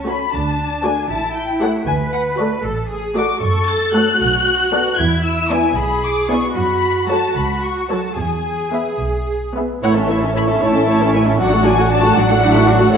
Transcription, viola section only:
0.08 A3 F#4
0.85 A3 F#4
1.62 A3 G4
2.40 A3 F#4
3.17 A3 F#4
3.95 A3 F#4
4.73 B3 F#4
5.51 B3 E4
6.30 B3 E4
7.10 F#3 F#4
7.91 F#3 F#4
8.73 B3 G#4
9.56 B3 G#4
9.83 A3 E4
9.97 C#4
10.10 A3 E4
10.23 C#4
10.36 A3 E4
10.50 C#4
10.63 A3 E4
10.75 C#4
10.88 A3 E4
11.01 C#4
11.14 A3 E4
11.28 C#4
11.40 F#3 D4
11.53 A3 F#4
11.65 F#3 D4
11.79 A3 F#4
11.92 F#3 D4
12.05 A3 F#4
12.18 F#3 D4
12.31 A3 F#4
12.44 F#3 D4
12.57 A3 F#4
12.69 F#3 D4
12.81 A3 F#4
12.94 E4

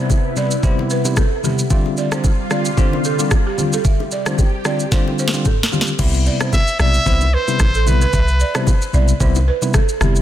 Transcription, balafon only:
0.37 D5
0.64 C5
0.91 B4
1.18 A4
1.44 G4
1.71 E5
1.98 D5
2.13 C5
2.52 D5
2.78 C5
3.05 A4
3.47 G4
3.74 A4
3.85 E5
4.12 D5
4.27 C5
4.66 D5
4.93 C5
5.19 C5
5.46 A4
5.73 G4
6.00 E5
6.27 D5
6.41 C5
6.80 D5
7.07 C5
7.34 B4
7.75 A4
8.02 B4
8.14 E5
8.41 D5
8.56 C5
8.94 D5
9.21 C5
9.48 B4
9.75 A4
10.01 G4

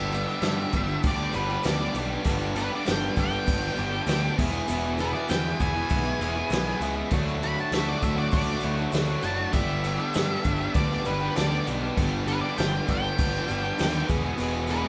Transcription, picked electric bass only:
Already playing: G1
0.42 G2
0.74 G1
1.04 D2
1.35 G1
1.66 D2
1.94 B1
2.26 G1
2.88 G1
3.17 G1
3.47 G1
3.79 G1
4.07 D2
4.39 E1
4.70 E1
5.31 E2
5.61 E1
5.91 B1
6.19 E1
6.50 B1
6.80 C#2
7.12 D2
7.72 D2
8.03 D2
8.33 D2
8.64 D2
8.93 D2
9.23 F#1
9.53 G1
10.16 G2
10.45 G1
10.75 D2
11.07 G1
11.38 D2
11.68 B1
11.98 G1
12.58 G1
12.89 G1
13.19 G1
13.50 G1
13.81 D#2
14.09 E1
14.40 E1

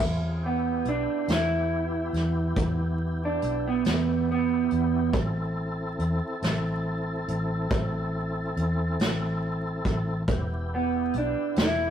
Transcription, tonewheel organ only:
0.01 C4 F4 G#4
0.44 B3 E4 G4
5.13 C4 E4 A4
10.27 B3 E4 G4

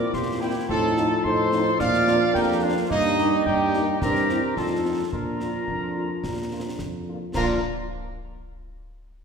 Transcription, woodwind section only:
0.14 G4
0.41 E4
0.69 F4
1.25 A4
1.81 D5
2.36 D#4
2.63 D4
2.90 A#3
3.46 D#4
4.01 G4
4.56 F4
5.12 F4
7.35 F4

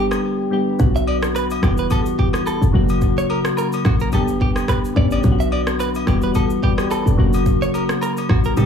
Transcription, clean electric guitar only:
0.96 E5
1.08 D5
1.36 B4
1.64 G4
1.79 B4
1.92 A4
2.19 G4
2.47 A4
3.18 C#5
3.30 A#4
3.58 A#4
3.86 F#4
4.01 A#4
4.14 A4
4.42 G4
4.69 B4
4.97 D5
5.12 D5
5.40 E5
5.53 D5
5.80 B4
6.08 G4
6.23 B4
6.36 A4
6.64 G4
6.91 A4
7.62 C#5
7.75 A#4
8.03 A#4
8.30 F#4
8.46 A#4
8.58 A4

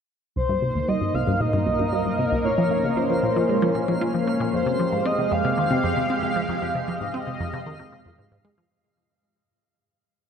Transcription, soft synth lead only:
0.37 C5
0.88 D#5
1.15 F5
1.40 D#5
2.45 C#5
2.97 C5
4.54 C5
5.06 D#5
5.32 F5
5.58 F5

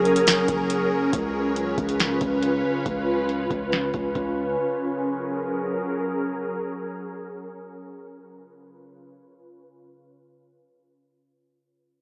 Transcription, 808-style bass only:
Already playing: F#1
0.49 F#1
1.13 C#2
1.78 C#2
2.21 C#2
2.86 C#2
3.50 C#2
3.94 C#2
4.15 C#2

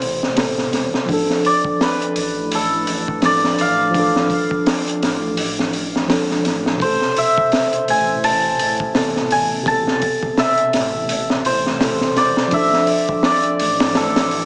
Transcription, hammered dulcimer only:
Already playing: C5
1.46 D5
1.82 B4
2.55 A4
3.25 D5
3.61 F5
6.82 C5
7.18 E5
7.90 G#5
8.24 A5
9.32 G#5
9.68 A5
10.39 E5
11.46 C5
12.17 D5
12.53 E5
13.25 D5
13.97 A4

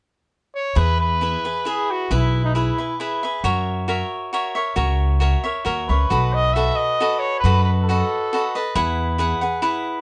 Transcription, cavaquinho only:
0.75 E4 G#4 B4 E5
1.21 E4 G#4 B4 E5
1.45 G#4 B4 E5
1.65 E4 G#4 B4 E5
2.11 E4 G#4 B4 E5
2.55 E4 G#4 B4 E5
2.78 G#4 B4 E5
3.00 E4 G#4 B4 E5
3.23 G#4 B4 E5
3.44 F#4 A#4 C#5 E5
3.88 F#4 A#4 C#5 E5
4.33 F#4 A#4 C#5 E5
4.55 A#4 C#5 E5
4.76 F#4 A#4 C#5 E5
5.20 F#4 A#4 C#5 E5
5.44 A#4 C#5 E5
5.65 F#4 A#4 C#5 E5
5.89 A#4 C#5 E5
6.10 F#4 A4 B4 D#5
6.56 F#4 A4 B4 D#5
7.00 F#4 A4 B4 D#5
7.45 F#4 A4 B4 D#5
7.89 F#4 A4 B4 D#5
8.33 F#4 A4 B4 D#5
8.55 A4 B4 D#5
8.75 E4 G#4 B4 F#5
9.18 E4 G#4 B4 F#5
9.41 G#4 B4 F#5
9.62 E4 G#4 B4 F#5

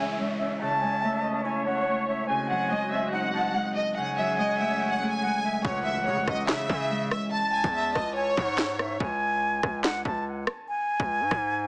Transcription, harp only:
Already playing: C#3 E3 G#3 E4
0.00 C#4
0.19 G#3
0.61 C#3
0.82 G#3
1.03 A3
1.24 C#4
1.45 E4
1.66 C#4
1.87 A3
2.29 C#3
2.50 F#3
2.71 G#3
2.92 C4
3.13 D#4
3.34 C4
3.54 G#3
3.97 C#3
4.18 F#3
4.38 G#3
4.60 A3
4.82 C#4
5.01 A3
5.22 G#3
5.65 C#3
5.86 E3
6.07 G#3
6.28 C#4
6.48 E4
6.70 C#4
6.91 G#3

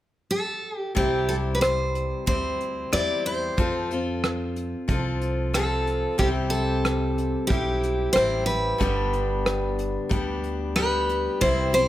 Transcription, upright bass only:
0.97 C2
2.28 D2
2.93 E2
3.58 F2
4.89 C2
6.19 C2
7.50 B1
8.16 A1
8.81 G1
10.11 D2
11.42 C2

